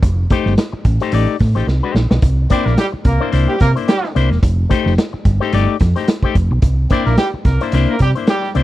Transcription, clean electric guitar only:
0.31 A3 D#4 G4 C5
0.58 muted clean electric guitar stroke
0.73 muted clean electric guitar stroke
1.01 A3 D#4 G4 C5
1.13 A3 D#4 G4 D5
1.40 muted clean electric guitar stroke
1.55 A3 D#4 G4 C5
1.83 A3 D#4 G4 C5
1.95 muted clean electric guitar stroke
2.11 muted clean electric guitar stroke
2.50 A#3 D4 E4 D5
2.78 muted clean electric guitar stroke
2.92 muted clean electric guitar stroke
3.20 A#3 D4 E4 C5
3.32 A#3 D4 E4 C5
3.60 muted clean electric guitar stroke
3.76 A#3 D4 E4 C5
4.03 muted clean electric guitar stroke
4.15 A#3 D4 E4 C5
4.31 muted clean electric guitar stroke
4.69 A3 D#4 G4 C5
4.98 muted clean electric guitar stroke
5.13 muted clean electric guitar stroke
5.40 A3 D#4 G4 C5
5.53 A3 D#4 G4 D5
5.81 muted clean electric guitar stroke
5.96 A3 D#4 G4 C5
6.24 A3 D#4 G4 C5
6.36 muted clean electric guitar stroke
6.52 muted clean electric guitar stroke
6.91 A#3 D4 E4 D5
7.19 muted clean electric guitar stroke
7.35 muted clean electric guitar stroke
7.61 A#3 D4 E4 C5
7.74 A#3 D4 E4 C5
8.00 muted clean electric guitar stroke
8.15 A#3 D4 E4 C5
8.43 muted clean electric guitar stroke
8.55 A#3 D4 E4 C5

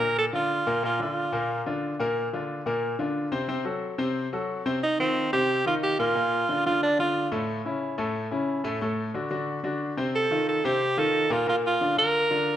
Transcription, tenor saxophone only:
Already playing: A#4
0.18 A4
0.35 F4
0.85 F4
1.02 F4
4.83 D#4
5.00 C4
5.33 G4
5.67 F4
5.83 G4
6.00 F4
6.66 F4
6.83 D4
7.00 F4
10.15 A4
10.49 A4
10.65 G4
10.99 A4
11.32 F4
11.49 F4
11.67 F4
11.99 A#4

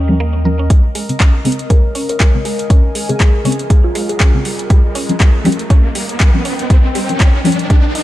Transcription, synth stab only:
0.09 F3 G3 C#4
0.45 F3 G3 C#4
1.09 C#3 G#3 C4
1.44 C#3 G#3 C4
2.34 C#3 G#3 C4
3.09 C#3 G#3 C4
3.44 C#3 G#3 C4
4.34 C#3 G#3 C4
5.09 F3 G3 C#4
5.44 F3 G3 C#4
6.34 F3 G3 C#4
7.09 F3 G3 C#4
7.44 F3 G3 C#4

